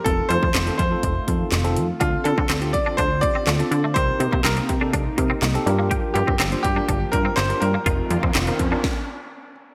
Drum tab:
HH |x-x-xxx-x-x-xxx-|x-x-xxx-x-x-xxx-|x-x-xxx-x-x-xxx-|x-x-xxx-x-x-xxx-|
CP |----x-------x---|----x-------x---|----x-------x---|----x-------x---|
SD |----o-------o---|----o-------o---|----o-------o---|----o-------o---|
BD |o--o--o-o-o-----|o--o--o-o-o-----|o--o--o-o-o-----|o--o--o-o-o-----|

HH |x-x-xxx---------|
CP |----x-----------|
SD |----o---o-------|
BD |o--o--o-o-------|